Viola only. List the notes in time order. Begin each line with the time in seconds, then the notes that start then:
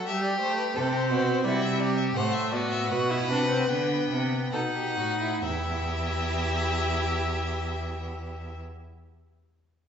0.08 G3
0.41 A3
0.76 C4
1.45 G3
2.16 A3
2.53 B3
2.91 F#4
3.10 E4
3.30 D4
3.50 C4
3.70 B3
4.53 D#4
5.44 E4